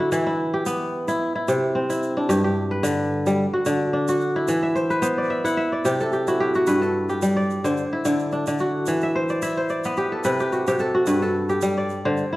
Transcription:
Already playing: D3 D4 F#4
0.00 E4
0.12 E3 E4, shaker
0.26 E4
0.53 G4
0.66 B3, shaker
1.08 E4, shaker
1.36 E4
1.48 C3, shaker
1.75 C4
1.90 E4, shaker
2.03 shaker
2.17 D4
2.29 G2 G4, shaker
2.44 G4
2.71 B4
2.83 D3, shaker
3.26 G3, shaker
3.54 F#4
3.66 D3, shaker
3.93 D4
4.08 F#4, shaker
4.20 shaker
4.36 E4
4.48 E3, shaker
4.62 E5
4.75 C5, shaker
4.90 B4, shaker
5.02 B3 C5, shaker
5.18 D5
5.30 E5
5.45 E4 F#5, shaker
5.57 E5
5.72 D5
5.85 C3 G4, shaker
6.00 A4, shaker
6.12 G4, shaker
6.27 E4 F#4, shaker
6.40 G4
6.54 F#4, shaker
6.67 G2 B4, shaker
6.82 A4, shaker
7.09 G4, shaker
7.22 G3, shaker
7.37 D5
7.50 shaker
7.64 D3 C5, shaker
7.77 shaker
7.93 E4
8.05 D3, shaker
8.19 shaker
8.31 D4, shaker
8.46 D3, shaker
8.58 F#4, shaker
8.86 E3, shaker
9.01 E5, shaker
9.15 C5
9.28 D5, shaker
9.42 E4 E5, shaker
9.57 C5
9.69 D5, shaker
9.84 B3 B4, shaker
9.97 G4, shaker
10.12 A4
10.24 C3 B4, shaker
10.39 G4, shaker
10.52 F#4, shaker
10.67 C3 G4, shaker
10.79 A4, shaker
10.95 F#4
11.06 G2 B4, shaker
11.22 A4, shaker
11.49 G4, shaker
11.61 G3, shaker
11.77 D5
11.89 shaker
12.05 D3 C5
12.17 shaker
12.32 E4

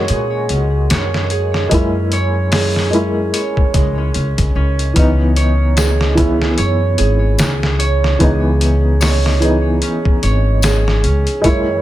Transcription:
Already playing: G#3 A#3 C#4 E4 F#4 C#5
0.08 A#2 G#4, closed hi-hat
0.49 C#2 C#4, closed hi-hat
0.90 F#2 C#5, snare, closed hi-hat
1.14 snare
1.30 G#4, closed hi-hat
1.54 snare
1.69 F#2 G#3 A#3 C#4, kick, closed hi-hat
1.74 E4
2.12 C#5, closed hi-hat
2.52 G#4, snare, open hi-hat
2.76 snare
2.90 G#3 A#3 C#4, closed hi-hat
2.94 E4
3.34 C#5, closed hi-hat
3.57 kick
3.74 C#2 G#3, kick, closed hi-hat
3.98 C#4
4.14 C#2 C#4, closed hi-hat
4.38 C#2, kick, closed hi-hat
4.55 C#2 C#4
4.79 closed hi-hat
4.94 C#2 E3 B3 C#4, kick, closed hi-hat
4.98 D#4
5.36 C#5, closed hi-hat
5.77 G#4, snare, closed hi-hat, tambourine
6.01 snare
6.15 E3 B3 C#4 E4, kick, closed hi-hat
6.42 snare
6.58 F#2 C#5, closed hi-hat
6.98 G#1 G#4, closed hi-hat
7.38 C#2 C#4, snare, closed hi-hat, tambourine
7.63 snare
7.79 C#5, closed hi-hat
8.04 snare
8.19 C#2 E3 B3 G#4, kick, closed hi-hat
8.23 D#4
8.61 C#4, closed hi-hat
9.01 C#5, snare, open hi-hat, tambourine
9.26 snare
9.40 E3 B3 G#4, closed hi-hat
9.44 D#4
9.82 C#4, closed hi-hat
10.05 kick
10.23 G#1 C#5, closed hi-hat
10.62 G#4, snare, closed hi-hat, tambourine
10.88 snare
11.04 C#2 C#4, closed hi-hat
11.27 closed hi-hat
11.41 F#2 G#3 A#3 E4 C#5, kick, closed hi-hat, riser

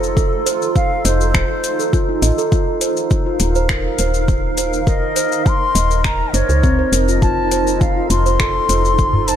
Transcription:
Already playing: F1 D#4 F4 A4
0.03 shaker
0.17 A4, kick, shaker
0.46 C5, closed hi-hat, shaker
0.62 shaker
0.76 F5, kick, shaker
1.05 F1 C5 D#5, closed hi-hat, shaker
1.21 shaker
1.34 D#1, finger snap, kick, shaker
1.64 closed hi-hat, shaker
1.79 A4, shaker
1.93 F4, kick, shaker
2.09 D#4
2.22 A1 D#5, closed hi-hat, shaker
2.38 A4, shaker
2.52 F4 A#4 F5, kick, shaker
2.81 C5, closed hi-hat, shaker
2.97 shaker
3.11 kick, shaker
3.26 F4
3.40 D#1, closed hi-hat, shaker
3.55 C5, shaker
3.69 finger snap, kick, shaker
3.99 D#1 C5, closed hi-hat, shaker
4.14 shaker
4.28 kick, shaker
4.58 C5, closed hi-hat, shaker
4.73 shaker
4.81 F5
4.87 A#4 D#5, kick, shaker
5.16 C5, closed hi-hat, shaker
5.32 shaker
5.46 C6, kick, shaker
5.75 D#1 D#5, closed hi-hat, shaker
5.91 shaker
6.04 A#5, finger snap, kick, shaker
6.34 F#1 C5 C#5, closed hi-hat, shaker
6.49 C#2 C5, shaker
6.63 C4, kick, shaker
6.79 C5
6.92 F1 A#4, closed hi-hat, shaker
7.08 F4, shaker
7.22 F4 A4 A5, kick, shaker
7.51 C5, closed hi-hat, shaker
7.67 shaker
7.81 F5, kick, shaker
7.97 F4
8.10 F1 C6, closed hi-hat, shaker
8.26 C5, shaker
8.40 A4, finger snap, kick, shaker
8.69 F1 C5, closed hi-hat, shaker
8.85 shaker
8.98 kick, shaker
9.13 udu
9.28 C5 A5, closed hi-hat, shaker

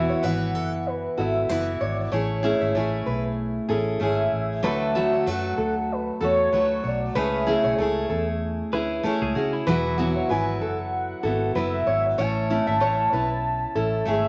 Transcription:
Already playing: E1 E3 B3 E4 F#4 E5
0.09 C#5
0.23 G#1 E3 B3 E4 F#4 B4 F#5
0.55 F#1 A4
0.87 B4
1.17 G#1 B3 E4 F#4 A4 E5
1.49 F#1 E3 B3 E4 F#4 B4
1.81 G#1 C#5 D5
2.12 A1 A3 C#4 E4 G#4 C#5
2.43 A3 C#4 E4 G#4
2.61 G#1 E5
2.75 A1 A3 C#4 E4 G#4 C#5
3.06 B1 B4
3.69 A1 C#4 E4 G#4 A4
4.00 G#1 A3 C#4 E4 G#4 E5
4.32 A1
4.63 D2 D3 F#3 A3 F#4 A4 B4 E5
4.95 D3 F#3 A3 F#4 A4
5.13 C#5
5.26 F#2 F#3 A3 F#4 A4 B4 F#5
5.58 D2 A4
5.92 B4
6.21 E2 A3 F#4 A4 C#5
6.53 D2 F#3 A3 F#4 A4 B4
6.84 B1 C#5 D5
7.15 C#2 C#3 A3 C#4 E4 G#4 B4 E5
7.47 C#3 A3 C#4 E4 G#4
7.64 B1 C#5
7.78 C#2 A3 C#4 E4 G#4 A4
8.10 E2 A4
8.73 D2 C#4 E4 G#4 B4
9.03 A3 C#4 E4 G#4 A4, muted fingered electric bass stroke
9.22 C#2 G#4
9.35 C#3 C#4 E4 F#4 G#4
9.53 E4
9.67 E1 E3 F#3 B3 E4 F#4 B4
9.98 E3 F#3 B3 E4 F#4
10.16 C#5
10.29 G#1 F#3 B3 E4 F#4 B4 G#5
10.61 F#1 A4 F#5
11.23 G#1 B3 E4 F#4 A4
11.55 F#1 F#3 B3 E4 F#4 B4 E5
11.87 G#1 C#5
12.18 A1 A3 C#4 E4 C#5 A5
12.50 A3 C#4 E4
12.67 G#1 E5
12.80 A1 A3 C#4 E4 C#5
13.13 B1 C#4 E4 B4
13.75 A1 C#4 E4 A4
14.05 G#1 A3 C#4 E4 G#4 E5

